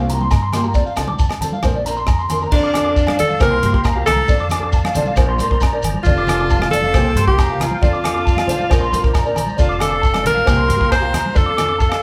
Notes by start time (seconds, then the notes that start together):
Already playing: C2
0.09 F3 A#3 F4 G4 A#5, closed hi-hat, shekere
0.20 C6, high conga, shekere
0.31 G2 A#5, kick, cross-stick, low agogo, shekere
0.42 C6
0.52 F3 A#3 F4 G4 C6, cross-stick, closed hi-hat, low conga, low agogo, shekere
0.64 A#3 F4 G4 A#5, shekere
0.74 F2 F3 C4 D5, muted nylon-string guitar stroke, kick, shekere
0.86 F5, shekere
0.96 C2 F3 C4 D4 A4 A5, cross-stick, closed hi-hat, low agogo, shekere
1.08 D4 D6, muted nylon-string guitar stroke, high conga, low conga, shekere
1.12 C4
1.19 A5, kick, shekere
1.29 cross-stick, low agogo, shekere
1.40 F3 C4 D4 A4 A5, muted nylon-string guitar stroke, closed hi-hat, low conga, shekere
1.52 F5, high conga, shekere
1.63 A#1 F3 C4 D4 A#4 C5, kick, cross-stick, high conga, low agogo, shekere
1.74 D5, high conga
1.85 F3 C4 D4 A#4 A#5, closed hi-hat, shekere
1.97 C6, shekere
2.07 F2 A#5, kick, cross-stick, low agogo, shekere
2.19 C6, shekere
2.29 F3 C4 D4 A#4 C6, closed hi-hat, low conga, low agogo, shekere
2.41 C4 D4 A#4 A#5, shekere
2.51 F2 F3 D4 A4 D5 F5 A5, muted nylon-string guitar stroke, kick, crash, low conga, shekere
2.64 D6, shekere
2.74 F3 C4 D4 A4 D6, cross-stick, closed hi-hat, low conga, low agogo
2.85 D4 A4 D6
2.89 C4
2.96 kick, shekere
3.07 F5, cross-stick, high conga, low agogo
3.17 F2 F3 C4 D4 A4 D5, closed hi-hat, low conga, shekere
3.29 F5, high conga, shekere
3.38 C2 F3 A#3 F4 G4 A#4 C5 A#5, kick, cross-stick, low agogo, shekere
3.51 C6
3.62 G2 F3 A#3 F4 G4 C6, closed hi-hat, high conga, shekere
3.73 C2 A#3 F4 G4 C6, kick
3.84 A#5, kick, cross-stick, low agogo, shekere
3.95 A#3 F4 G4 F5
4.06 C2 A4 A#5, cross-stick, closed hi-hat, low conga, low agogo, shekere
4.17 high conga
4.27 F2 F3 C4 D4 A4 D5 A5, kick, low conga, shekere
4.39 D6, shekere
4.49 F3 C4 D4 A4 D6, cross-stick, closed hi-hat, low conga, low agogo, shekere
4.60 C4 D4 A4 D6
4.72 A5, kick, shekere
4.85 F5, cross-stick, high conga, low agogo
4.94 C2 F3 C4 D4 A4 D5, closed hi-hat, low conga, shekere
5.05 F5, high conga, shekere
5.15 A#1 F3 C4 D4 A#4 C5 A#5, kick, cross-stick, low agogo, shekere
5.29 C6
5.38 F2 F3 C4 D4 A#4 C6, closed hi-hat, high conga, shekere
5.49 A#1 C4 D4 A#4 C6, kick
5.61 A#5, kick, cross-stick, low agogo, shekere
5.73 C4 D4 A#4 D5
5.82 G1, closed hi-hat, low conga, low agogo, shekere
5.94 high conga
6.03 F1 F3 C4 F4 D5 F5 A5, kick, low conga, shekere
6.07 D4 A4
6.17 D6, shekere
6.27 F3 C4 D4 A4 D6, cross-stick, closed hi-hat, low conga, low agogo, shekere
6.39 C4 D4 A4 D6
6.50 A5, kick, shekere
6.59 F5, cross-stick, high conga, low agogo
6.71 F1 C4 D4 A4 D5, muted nylon-string guitar stroke, closed hi-hat, low conga, shekere
6.82 F5, high conga, shekere
6.93 C2 F3 A#3 F4 G4 C5 G5, kick, cross-stick, low agogo, shekere
7.15 G2 F3 A#3 G4 C6, closed hi-hat, high conga, shekere
7.27 C2 A#3 F4 G4 C6, kick
7.39 A#5, kick, cross-stick, low agogo, shekere
7.49 A#3 F4 G4 F5
7.59 C2 F4 A#5, cross-stick, closed hi-hat, low conga, low agogo, shekere
7.71 high conga
7.81 F2 F3 C4 D4 A4 D5 A5, kick, low conga, shekere
7.93 D6, shekere
8.03 F3 C4 D4 A4 D6, cross-stick, closed hi-hat, low conga, low agogo
8.14 C4 D4 A4 D6, shekere
8.25 A5, kick, shekere
8.36 F5, cross-stick, high conga, low agogo
8.47 B1 F3 C4 D4 A4 C5, closed hi-hat, high conga, low conga, shekere
8.59 F5, high conga, shekere
8.70 A#1 F3 C4 D4 A#4 C5 A#5, kick, cross-stick, low agogo, shekere
8.81 C6, shekere
8.91 F2 F3 C4 D4 A#4 C6, closed hi-hat, high conga, shekere
9.03 A#1 C4 D4 A#4, kick, shekere
9.13 A#5, kick, cross-stick, low agogo, shekere
9.25 C4 D4 A#4 D5, shekere
9.35 A#1 A#5, closed hi-hat, low conga, low agogo, shekere
9.47 high conga, shekere
9.57 F1 F3 C4 D4 F4 A4 D5 F5 A5, kick, low conga, shekere
9.69 D6, shekere
9.79 F3 C4 D4 A4 D6, cross-stick, closed hi-hat, low conga, low agogo, shekere
9.90 C4 D4 A4 D6
10.02 A5, kick, shekere
10.14 cross-stick, high conga, low agogo
10.23 A#1 F3 C4 D4 A#4, muted clean electric guitar stroke, muted nylon-string guitar stroke, closed hi-hat, low conga, shekere
10.34 F5, high conga, shekere
10.44 C2 F3 A#3 F4 G4 C5, kick, cross-stick, low agogo, shekere
10.48 C5 A#5
10.57 C6
10.66 G2 F3 A#3 F4 G4 C6, closed hi-hat, high conga, shekere
10.77 C2 A#3 F4 G4 C6
10.81 kick
10.91 C5 A#5, kick, cross-stick, low agogo, shekere
11.00 A#3 F4 G4 F5
11.12 E2 A#5, cross-stick, closed hi-hat, low conga, low agogo, shekere
11.26 high conga
11.33 F2 F3 C4 D4 A4, muted clean electric guitar stroke, kick, low conga, shekere
11.37 A4 D5 A5
11.46 D6
11.56 F3 C4 D4 A4 D6, cross-stick, closed hi-hat, low conga, low agogo, shekere
11.67 C4 D4 A4 D6
11.79 A4 A5, kick, shekere
11.89 F5, cross-stick, low agogo